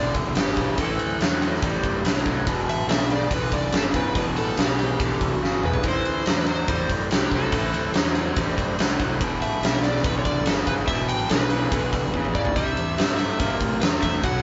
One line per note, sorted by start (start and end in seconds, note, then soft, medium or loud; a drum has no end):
0.00 0.14 B1 medium
0.00 0.31 E2 medium
0.00 0.32 D3 medium
0.00 0.77 D4 medium
0.00 0.77 G4 medium
0.00 0.77 B4 medium
0.00 0.12 D5 loud
0.00 0.77 F#5 medium
0.14 0.35 C2 medium
0.14 kick medium
0.14 ride medium
0.35 0.56 G1 medium
0.35 0.55 E2 medium
0.35 0.55 C#3 medium
0.35 0.80 G4 medium
0.35 snare loud
0.35 ride medium
0.57 0.77 B1 medium
0.57 0.76 E2 medium
0.57 0.76 C#3 medium
0.57 kick medium
0.57 ride medium
0.77 0.98 A1 medium
0.77 1.17 A2 medium
0.77 1.17 E3 medium
0.77 0.92 C#4 medium
0.77 0.92 F4 medium
0.77 0.92 G#4 medium
0.77 0.92 C5 medium
0.77 kick loud
0.77 ride medium
0.81 1.19 A4 medium
0.93 2.46 C4 medium
0.93 2.46 E4 medium
0.93 2.46 G4 medium
0.93 2.46 B4 medium
0.99 1.20 D2 medium
0.99 ride medium
1.21 1.61 E2 medium
1.21 1.39 A2 medium
1.21 1.40 F#3 loud
1.21 snare loud
1.21 ride medium
1.41 1.60 A2 medium
1.41 1.60 F#3 medium
1.41 ride medium
1.55 snare soft
1.62 1.83 E2 medium
1.62 2.00 A2 medium
1.62 2.01 G3 medium
1.62 kick loud
1.62 ride medium
1.83 2.04 F#2 medium
1.83 kick medium
1.83 ride medium
2.05 2.25 C2 medium
2.05 2.24 A2 medium
2.05 2.24 F#3 medium
2.05 snare loud
2.05 ride medium
2.25 2.46 C2 medium
2.25 2.44 A2 medium
2.25 2.44 F#3 medium
2.25 kick medium
2.25 ride medium
2.46 2.67 E1 medium
2.46 2.84 E2 medium
2.46 2.84 B2 medium
2.46 5.81 D4 medium
2.46 5.81 G4 medium
2.46 5.81 B4 medium
2.46 5.81 F#5 medium
2.46 kick loud
2.46 ride medium
2.68 2.87 A1 medium
2.68 2.89 E5 loud
2.68 ride medium
2.88 3.29 B1 medium
2.88 3.07 E2 medium
2.88 3.08 C#3 medium
2.88 3.09 E5 medium
2.88 snare loud
2.88 ride medium
3.09 3.28 E2 medium
3.09 3.29 C#3 medium
3.09 3.31 D5 loud
3.09 ride medium
3.30 3.51 B1 medium
3.30 3.68 E2 medium
3.30 3.69 D3 medium
3.30 3.54 B4 medium
3.30 kick loud
3.30 ride medium
3.52 3.72 C2 medium
3.52 3.73 D5 medium
3.52 kick medium
3.52 ride medium
3.72 3.93 G1 medium
3.72 3.92 E2 medium
3.72 3.92 C#3 medium
3.72 3.81 A4 medium
3.72 snare loud
3.72 ride medium
3.93 4.14 G1 medium
3.93 4.13 E2 medium
3.93 4.13 C#3 medium
3.93 4.17 B4 medium
3.93 kick medium
3.93 ride medium
4.15 4.36 E1 medium
4.15 4.53 E2 medium
4.15 4.54 B2 medium
4.15 4.23 B4 medium
4.15 kick loud
4.15 ride medium
4.37 4.57 A1 medium
4.37 4.59 A4 medium
4.37 ride medium
4.57 4.98 B1 medium
4.57 4.77 E2 medium
4.57 4.77 C#3 medium
4.57 5.31 G4 medium
4.57 snare loud
4.57 ride medium
4.79 4.98 E2 medium
4.79 4.99 C#3 medium
4.79 ride medium
4.99 5.20 B1 medium
4.99 5.38 E2 medium
4.99 5.38 D3 medium
4.99 kick loud
4.99 ride medium
5.21 5.41 C2 medium
5.21 kick medium
5.21 ride medium
5.31 5.67 F#4 medium
5.42 5.62 G1 medium
5.42 5.61 E2 medium
5.42 5.61 C#3 medium
5.42 snare medium
5.63 5.83 B1 medium
5.63 5.82 E2 medium
5.63 5.82 C#3 medium
5.63 5.86 B4 medium
5.63 mid tom medium
5.74 floor tom medium
5.83 6.04 A1 medium
5.83 6.22 A2 medium
5.83 6.22 E3 medium
5.83 kick loud
5.83 ride medium
5.88 9.19 C4 medium
5.88 9.19 E4 medium
5.88 9.19 G4 medium
5.88 6.41 C5 medium
5.88 9.19 C5 medium
6.05 6.26 D2 medium
6.05 ride medium
6.26 6.67 E2 medium
6.26 6.45 A2 medium
6.26 6.45 F#3 medium
6.26 snare loud
6.26 ride medium
6.41 6.48 B4 medium
6.46 6.66 A2 medium
6.46 6.66 F#3 medium
6.46 6.87 C5 medium
6.46 ride medium
6.68 6.89 E2 medium
6.68 7.06 A2 medium
6.68 7.06 G3 medium
6.68 kick loud
6.68 ride medium
6.89 7.10 F#2 medium
6.89 kick medium
6.89 ride medium
7.11 7.31 C2 medium
7.11 7.30 A2 medium
7.11 7.30 F#3 medium
7.11 7.33 G4 medium
7.11 snare loud
7.11 ride medium
7.31 7.52 C2 medium
7.31 7.51 A2 medium
7.31 7.52 F#3 medium
7.31 7.92 A4 medium
7.31 kick medium
7.31 ride medium
7.52 7.73 A1 medium
7.52 7.91 A2 medium
7.52 7.91 E3 medium
7.52 kick loud
7.52 ride loud
7.74 7.94 D2 medium
7.74 ride medium
7.94 8.35 E2 medium
7.94 8.14 A2 medium
7.94 8.14 F#3 medium
7.94 snare loud
7.94 ride medium
8.15 8.35 A2 medium
8.15 8.36 F#3 medium
8.15 ride medium
8.36 8.57 E2 medium
8.36 8.75 A2 medium
8.36 8.75 G3 medium
8.36 kick loud
8.36 ride medium
8.58 8.78 F#2 medium
8.58 kick medium
8.58 ride medium
8.79 8.99 C2 medium
8.79 8.98 A2 medium
8.79 8.98 F#3 medium
8.79 snare loud
8.79 ride medium
9.00 9.20 C2 medium
9.00 9.19 A2 medium
9.00 9.19 F#3 medium
9.00 kick medium
9.00 ride medium
9.20 9.40 E1 medium
9.20 9.59 E2 medium
9.20 9.59 B2 medium
9.20 12.53 D4 medium
9.20 12.53 F#4 medium
9.20 12.53 G4 medium
9.20 12.53 B4 medium
9.20 kick loud
9.20 ride medium
9.41 9.61 A1 medium
9.41 9.83 E5 loud
9.41 ride medium
9.62 10.03 B1 medium
9.62 9.82 E2 medium
9.62 9.82 C#3 medium
9.62 snare loud
9.62 ride medium
9.83 10.03 E2 medium
9.83 10.03 C#3 medium
9.83 10.05 D5 medium
9.83 ride medium
9.97 snare soft
10.04 10.25 B1 medium
10.04 10.43 E2 medium
10.04 10.43 D3 medium
10.04 10.18 B4 medium
10.04 kick loud
10.04 ride medium
10.19 10.25 C#5 medium
10.25 10.46 C2 medium
10.25 10.47 D5 medium
10.25 kick medium
10.25 ride medium
10.46 10.66 G1 medium
10.46 10.65 E2 medium
10.46 10.66 C#3 medium
10.46 10.52 A4 medium
10.46 snare loud
10.46 ride medium
10.67 10.87 G1 medium
10.67 10.87 E2 medium
10.67 10.87 C#3 medium
10.67 10.73 B4 medium
10.67 kick medium
10.67 ride medium
10.87 11.08 E1 medium
10.87 11.26 E2 medium
10.87 11.27 B2 medium
10.87 11.09 E5 medium
10.87 kick loud
10.87 ride medium
11.08 11.29 A1 medium
11.08 11.30 G5 loud
11.08 ride medium
11.29 11.71 B1 medium
11.29 11.49 E2 medium
11.29 11.50 C#3 medium
11.29 12.38 B4 medium
11.29 snare loud
11.29 ride medium
11.50 11.70 E2 medium
11.50 11.70 C#3 medium
11.50 ride medium
11.72 11.92 B1 medium
11.72 12.10 E2 medium
11.72 12.10 D3 medium
11.72 kick loud
11.72 ride medium
11.93 12.13 C2 medium
11.93 kick medium
11.93 ride medium
12.14 12.34 G1 medium
12.14 12.33 E2 medium
12.14 12.33 C#3 medium
12.14 kick medium
12.25 mid tom medium
12.35 12.55 G1 medium
12.35 12.54 E2 medium
12.35 12.55 C#3 medium
12.35 12.57 D5 medium
12.35 kick medium
12.45 floor tom medium
12.55 12.76 C2 medium
12.55 12.94 C3 medium
12.55 12.94 G3 medium
12.55 14.21 D4 medium
12.55 14.21 E4 medium
12.55 14.22 G4 medium
12.55 14.21 C5 medium
12.55 13.16 E5 medium
12.55 kick loud
12.55 ride medium
12.77 12.97 E2 medium
12.77 ride medium
12.98 13.38 G2 medium
12.98 13.17 C3 medium
12.98 13.17 A3 loud
12.98 snare loud
12.98 ride medium
13.17 13.38 C3 medium
13.17 13.38 A3 medium
13.17 13.57 E5 medium
13.17 ride medium
13.40 13.60 G2 medium
13.40 13.77 C3 medium
13.40 13.77 A#3 medium
13.40 kick loud
13.40 ride medium
13.60 13.81 A2 medium
13.60 kick medium
13.60 ride medium
13.81 14.02 E2 medium
13.81 14.01 C3 medium
13.81 14.01 A3 medium
13.81 13.87 B4 medium
13.81 snare loud
13.81 ride medium
14.02 14.23 E2 medium
14.02 14.21 C3 medium
14.02 14.22 A3 medium
14.02 14.24 E5 medium
14.02 kick medium
14.02 ride medium
14.22 14.42 B1 medium
14.22 14.42 B2 medium
14.22 14.42 F#3 medium
14.22 14.42 D#4 medium
14.22 14.42 F#4 medium
14.22 14.42 A4 medium
14.22 14.42 B4 medium
14.22 14.42 F#5 medium
14.22 kick loud
14.22 ride medium